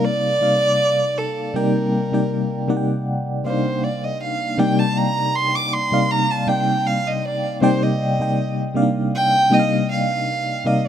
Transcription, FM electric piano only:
0.00 0.40 C3 loud
0.00 0.41 G3 loud
0.00 0.41 A#3 loud
0.00 0.42 D#4 medium
0.00 0.42 D5 medium
0.00 0.43 F5 loud
0.40 1.33 C3 medium
0.40 1.33 G3 medium
0.40 1.33 A#3 medium
0.40 1.33 D#4 medium
0.40 1.33 D5 medium
0.40 1.34 F5 medium
1.54 2.00 C3 medium
1.54 2.00 G3 medium
1.54 2.01 A#3 medium
1.54 2.01 D#4 medium
1.54 2.01 D5 medium
1.54 2.01 G5 loud
2.12 2.57 C3 medium
2.12 2.58 G3 medium
2.12 2.58 A#3 medium
2.12 2.58 D#4 medium
2.12 2.58 D5 medium
2.12 2.58 G5 medium
2.68 3.30 C3 medium
2.68 3.30 G3 medium
2.68 3.30 A#3 medium
2.68 3.30 D#4 medium
2.68 3.31 D5 medium
2.68 2.76 F#5 medium
2.77 3.34 G5 medium
3.44 4.36 C3 medium
3.44 4.37 G3 medium
3.44 4.37 A#3 medium
3.44 3.51 D4 medium
3.44 4.37 D5 medium
3.44 4.38 F5 medium
3.52 4.40 D#4 medium
4.58 5.65 C3 medium
4.58 5.65 G3 medium
4.58 5.65 A#3 medium
4.58 5.65 D#4 medium
4.58 5.66 D5 medium
4.58 5.66 G5 medium
5.92 6.37 C3 medium
5.92 6.37 G3 medium
5.92 6.37 A#3 medium
5.92 6.38 D#4 medium
5.92 6.38 D5 medium
5.92 6.38 F5 medium
6.47 7.40 C3 medium
6.47 7.40 G3 medium
6.47 7.40 A#3 medium
6.47 7.40 D#4 medium
6.47 7.41 D5 medium
6.47 7.41 G5 medium
7.61 8.08 C3 medium
7.61 8.08 G3 medium
7.61 8.08 A#3 medium
7.61 8.08 D#4 medium
7.61 8.08 D5 medium
7.61 8.09 G5 loud
8.20 8.65 C3 medium
8.20 8.65 G3 medium
8.20 8.65 A#3 medium
8.20 8.65 D#4 medium
8.20 8.66 D#5 medium
8.20 8.66 G5 medium
8.74 9.37 C3 medium
8.74 9.37 G3 medium
8.74 9.37 A#3 medium
8.74 8.82 D4 medium
8.74 9.38 D5 medium
8.74 9.38 F5 medium
8.82 9.41 D#4 medium
9.50 10.43 C3 medium
9.50 10.44 G3 medium
9.50 10.44 A#3 medium
9.50 10.44 D#4 medium
9.50 9.59 D#5 medium
9.59 10.48 F5 medium
10.64 10.88 C3 medium
10.64 10.88 G3 medium
10.64 10.88 A#3 medium
10.64 10.88 D#4 medium
10.64 10.88 D5 medium
10.64 10.88 F5 medium

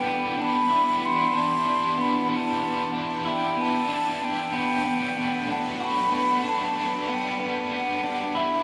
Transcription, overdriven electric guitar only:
0.00 0.37 E2 medium
0.00 0.38 B2 medium
0.00 0.38 E3 medium
0.00 0.39 G3 medium
0.00 0.39 D4 medium
0.00 0.36 E4 medium
0.37 0.70 G3 soft
0.37 0.70 D4 soft
0.37 0.70 E4 soft
0.41 0.68 E3 soft
0.69 1.32 E3 medium
0.69 1.34 G3 medium
0.69 1.36 D4 medium
0.74 1.36 E4 medium
1.33 1.97 E3 medium
1.33 1.98 G3 medium
1.33 1.99 D4 medium
1.38 2.00 E4 medium
1.96 3.25 E2 medium
1.96 3.25 B2 medium
1.96 3.23 E3 medium
2.01 3.25 G3 medium
2.01 3.27 D4 medium
2.01 3.27 E4 medium
3.24 3.86 E3 medium
3.24 3.88 G3 medium
3.24 3.90 D4 medium
3.29 3.91 E4 medium
3.87 4.52 E3 medium
3.87 4.53 G3 medium
3.87 4.55 D4 medium
3.92 4.54 E4 medium
4.50 5.79 B2 medium
4.50 5.78 F#3 medium
4.50 5.80 A3 medium
4.56 5.82 D4 medium
5.79 6.42 F#3 medium
5.79 6.44 A3 medium
5.79 6.46 D4 medium
5.84 6.46 F#4 medium
6.43 7.05 F#3 medium
6.43 7.07 A3 medium
6.43 7.10 D4 medium
6.48 7.10 F#4 medium
7.05 8.34 G3 medium
7.05 8.36 B3 medium
7.10 8.37 D4 medium
8.34 8.63 E3 medium
8.34 8.63 G3 medium
8.34 8.63 D4 medium
8.39 8.63 E4 medium

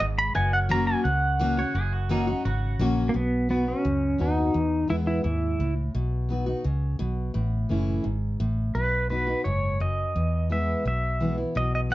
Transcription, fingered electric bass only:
0.01 0.30 G#1 medium
0.36 0.94 F#1 loud
1.05 1.63 C#2 medium
1.75 2.33 F#1 medium
2.45 2.75 G#1 medium
2.79 3.09 A#1 medium
3.15 3.73 B1 medium
3.85 4.15 C#2 medium
4.20 4.50 D#2 medium
4.55 4.84 E2 medium
4.90 5.20 E2 medium
5.25 5.55 D#2 medium
5.59 5.89 C#2 medium
5.95 6.53 B1 medium
6.65 6.95 C#2 medium
7.00 7.30 B1 medium
7.35 7.64 A1 medium
7.70 8.00 F#1 medium
8.05 8.35 G#1 medium
8.40 8.70 A1 medium
8.75 9.34 B1 medium
9.46 10.04 F#1 medium
10.16 10.74 E2 medium
10.85 11.44 B1 medium
11.56 11.95 B1 medium

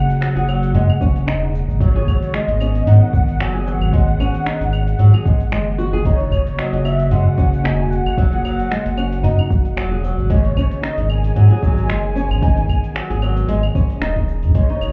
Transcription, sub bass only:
0.36 0.70 F#1 medium
0.74 0.86 F#2 medium
1.01 1.29 F#1 medium
1.27 1.64 E1 medium
1.68 2.03 G#1 loud
2.07 2.19 G#1 loud
2.48 2.83 G#1 loud
2.86 2.98 G#2 medium
3.13 3.41 G#1 medium
3.40 3.76 F#1 medium
3.80 4.15 G#1 loud
4.19 4.31 G#1 loud
4.60 4.95 G#1 medium
4.99 5.11 G#2 medium
5.25 5.53 G#1 medium
5.51 5.88 F#1 medium
5.93 6.28 F#1 loud
6.32 6.43 F#1 loud
6.73 7.07 F#1 medium
7.11 7.23 F#2 medium
7.38 7.66 F#1 medium
7.64 8.01 E1 medium
8.05 8.40 F#1 medium
8.44 8.56 F#1 loud
8.86 9.20 F#1 medium
9.24 9.35 F#2 medium
9.50 9.78 F#1 medium
9.77 10.13 E1 medium
10.18 10.53 G#1 loud
10.56 10.68 G#1 loud
10.98 11.32 G#1 loud
11.36 11.48 G#2 medium
11.63 11.91 G#1 medium
11.89 12.26 F#1 medium
12.30 12.65 G#1 medium
12.69 12.81 G#1 medium
13.10 13.45 G#1 medium
13.48 13.70 G#1 medium
13.75 13.87 G#1 medium
14.02 14.44 D#1 medium
14.43 14.52 G#2 loud
14.81 14.92 F#1 medium

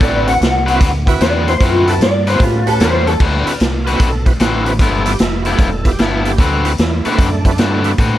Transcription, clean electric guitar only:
0.02 0.27 D5 medium
0.28 1.05 F#5 loud
1.22 1.47 D5 loud
1.48 1.61 C5 loud
1.62 1.87 F4 medium
1.89 2.01 A4 medium
2.02 2.27 D5 loud
2.29 2.41 C5 medium
2.42 2.67 F4 loud
2.68 2.80 A4 loud
2.81 3.06 C5 medium
3.07 3.20 A4 loud

